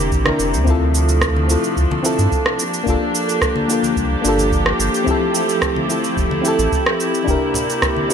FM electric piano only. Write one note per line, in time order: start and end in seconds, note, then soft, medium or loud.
0.00 0.25 D4 medium
0.00 0.26 E4 medium
0.00 0.27 G4 medium
0.00 0.28 A#4 loud
0.25 0.40 D4 medium
0.25 0.41 E4 medium
0.25 0.41 G4 medium
0.25 0.42 A#4 medium
0.64 1.45 C4 medium
0.64 1.46 E4 medium
0.68 1.47 F4 medium
0.68 1.48 A4 medium
1.48 2.00 C4 medium
1.48 2.01 E4 medium
1.48 2.02 F4 medium
1.48 2.02 A4 medium
2.03 2.57 C4 medium
2.03 2.58 E4 medium
2.03 2.58 F4 medium
2.03 2.59 A4 loud
2.84 3.65 A#3 medium
2.84 3.66 D4 medium
2.88 3.67 F4 medium
2.88 3.68 A4 loud
3.68 4.21 A#3 medium
3.68 4.21 D4 medium
3.68 4.22 F4 medium
3.68 4.22 A4 medium
4.22 5.03 A#3 medium
4.22 5.04 D4 medium
4.26 5.05 F4 medium
4.26 5.06 A4 loud
5.04 5.85 C4 medium
5.04 5.86 E4 medium
5.08 5.87 G4 medium
5.08 5.88 A4 loud
5.88 6.40 C4 medium
5.88 6.41 E4 medium
5.88 6.42 G4 medium
5.88 6.42 A4 medium
6.42 7.23 C4 medium
6.42 7.24 E4 medium
6.46 7.25 G4 medium
6.46 7.26 A4 loud
7.24 8.05 D4 medium
7.24 8.06 E4 medium
7.28 8.07 G4 medium
7.28 8.08 A#4 medium
8.08 8.14 D4 medium
8.08 8.14 E4 medium
8.08 8.14 G4 medium